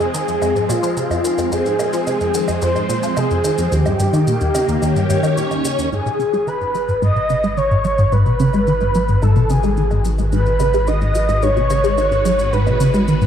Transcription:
Already playing: F3 G#3 C4 G#4 C5
0.00 F2, low woodblock, shaker
0.14 D#3, shaker
0.28 F2, shaker
0.42 F2, low woodblock, shaker
0.55 G#2, shaker
0.69 A#2 F4, low woodblock, shaker
0.83 F3, shaker
0.97 C3, shaker
1.10 F2, low woodblock, shaker
1.24 D#3, shaker
1.38 F2, low woodblock, shaker
1.52 F2 G#4, shaker
1.66 G#2, shaker
1.79 A#2, low woodblock, shaker
1.93 F3, shaker
2.07 C3, low woodblock, shaker
2.21 F2, shaker
2.34 D#3, shaker
2.48 F2, low woodblock, shaker
2.62 F2 C5, shaker
2.76 G#2, low woodblock, shaker
2.89 A#2, shaker
3.03 F3, shaker
3.17 C3 G#4, low woodblock, shaker
3.31 F2, shaker
3.44 D#3, low woodblock, shaker
3.58 F2, shaker
3.72 D#2 D#3 G4, shaker
3.86 G2 A#3, low woodblock, shaker
3.99 G2, shaker
4.13 D#3, low woodblock, shaker
4.27 A#2, shaker
4.41 D#2, shaker
4.55 C#3, low woodblock, shaker
4.68 D#2 C#4 G4 C#5, shaker
4.82 D#2, low woodblock, shaker
4.96 G2, shaker
5.10 G2, shaker
5.23 D#3, low woodblock, shaker
5.37 A#2, shaker
5.51 D#2, low woodblock, shaker
5.65 C#3, shaker
5.78 D#2, shaker
5.92 G#1 G#2 G#4, shaker
6.06 B2, low woodblock, shaker
6.19 C#3, shaker
6.33 G#3, shaker
6.47 D#3 B4, low woodblock, shaker
6.61 G#2, shaker
6.67 B3
6.75 F#3, low woodblock, shaker
6.88 G#2, shaker
7.02 G#2 D#5, shaker
7.16 B2, low woodblock, shaker
7.30 C#3, shaker
7.44 G#3, low woodblock, shaker
7.57 D#3 F#4 C#5, shaker
7.71 G#2, shaker
7.84 F#3, low woodblock, shaker
7.98 G#2, shaker
8.12 G#2 B4, low woodblock, shaker
8.25 B2 B4, shaker
8.40 C#3, shaker
8.53 G#3, low woodblock, shaker
8.67 D#3, shaker
8.81 G#2, low woodblock, shaker
8.95 F#3, shaker
9.08 G#2, shaker
9.22 G#2 A4, low woodblock, shaker
9.36 B2, shaker
9.50 C#3 G#4, low woodblock, shaker
9.63 G#3, shaker
9.77 D#3, shaker
9.91 G#2, low woodblock, shaker
10.05 F#3, shaker
10.18 G#2, low woodblock, shaker
10.32 G#2 B4, shaker
10.46 B2, shaker
10.60 C#3, low woodblock, shaker
10.74 G#3, shaker
10.87 D#3 D#5, low woodblock, shaker
11.01 G#2, shaker
11.15 F#3, shaker
11.29 G#2, low woodblock, shaker
11.42 G#2 C#5, shaker
11.56 B2, low woodblock, shaker
11.70 C#3, shaker
11.84 G#3, shaker
11.98 D#3, low woodblock, shaker
12.12 G#2, shaker
12.25 F#3, low woodblock, shaker
12.39 G#2, shaker
12.53 G#2 B4, shaker
12.67 B2, low woodblock, shaker
12.80 C#3, shaker
12.94 G#3, low woodblock, shaker
13.08 D#3, shaker
13.21 G#2, shaker

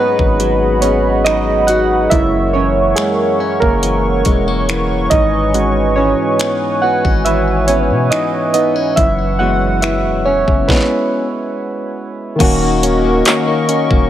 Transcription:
Already playing: G#2 F#3 A#3 B3 C#4 D#4 F#4 G#4 B4 C#5 D#5 F#5 B5
0.00 B3
0.19 G#1, kick
0.40 F#3, closed hi-hat
0.81 B3 C#4 C#5, closed hi-hat
1.24 F#3 D#4 D#5, finger snap, closed hi-hat
1.67 D#4 F#4 F#5, closed hi-hat
2.10 F#1 F#2 G#3 A#3 E4 A#4 C#5 E5 C#6, kick, closed hi-hat
2.53 E3 C#4 C#5
2.95 G#3 A#3 G#4, finger snap, closed hi-hat
3.40 C#4
3.60 F#1 A#3 A#4, kick
3.83 E3, closed hi-hat
4.25 E1 G#3, kick, closed hi-hat
4.48 A#3
4.69 E3, finger snap, closed hi-hat
5.10 G#1 G#2 D#4 B4 D#5 G#5, kick, closed hi-hat
5.54 G#2 G#3 C#4 F#4, closed hi-hat
5.96 E3 C#4 C#5
6.39 B3, finger snap, closed hi-hat
6.82 B3 F#4 F#5
7.05 G#1 C#4, kick
7.25 E3 E4 E5, closed hi-hat
7.67 B3 C#4 C#5, closed hi-hat
7.90 B2
8.10 E3 D#4 D#5, finger snap, closed hi-hat
8.53 B3 D#4 D#5, closed hi-hat
8.76 C#4
8.96 F#1 F#2 E4 E5 F#5, kick, closed hi-hat
9.39 E3 G#3 B3 E4 F#4 F#5
9.82 B3 E4 E5, finger snap, closed hi-hat
10.05 E1
10.25 C#4 C#5
10.48 F#1, kick
10.68 G#3 B3 E4 B4, kick, snare
12.36 D#3 A#3
12.40 D#1 D#3 C#4 F#4 A#4 D#5 F#5 C#6, kick, closed hi-hat, crash
12.62 A#3
12.83 C#4, closed hi-hat
13.05 A#3
13.25 C#4, clap, closed hi-hat
13.48 A#3
13.69 C#4, closed hi-hat
13.90 D#1 A#3, kick

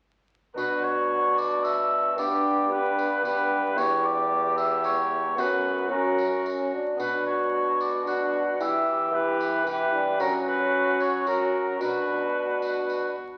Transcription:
0.54 B2 B3 D4 F#4 B4, tambourine
0.58 D4 F#4
0.84 C#5
1.37 D5, tambourine
1.64 E5, tambourine
2.16 G2 B3 D4 G4 D5, tambourine
2.69 B3 D4 G4 B4
2.99 tambourine
3.21 B3 D4 G4 B4, tambourine
3.75 E2 B3 E4 G4 C#5, tambourine
4.05 D5
4.57 E5, tambourine
4.84 C#5, tambourine
5.35 F#2 B3 C#4 F#4 B4, tambourine
5.39 F#2
5.88 C#4 F#4 A#4
6.18 tambourine
6.46 C#4, tambourine
6.74 D4
6.96 B2 B3 D4 F#4, tambourine
7.00 B4
7.27 C#5
7.80 D5, tambourine
8.03 B3 D4 F#4
8.07 D4 F#4 F#5, tambourine
8.57 E3 B3 E4 G4, tambourine
8.61 E3 G4 E5
9.11 B3 E4 G4 B4
9.40 tambourine
9.64 B3 E4 G4, tambourine
9.69 B4
9.93 D4
10.19 F#3 C#4 F#4 A#4, tambourine
10.47 B4
11.00 C#5, tambourine
11.25 C#4 F#4 A#4, tambourine
11.80 B2 D4 F#4 B4, tambourine
12.62 tambourine
12.90 tambourine

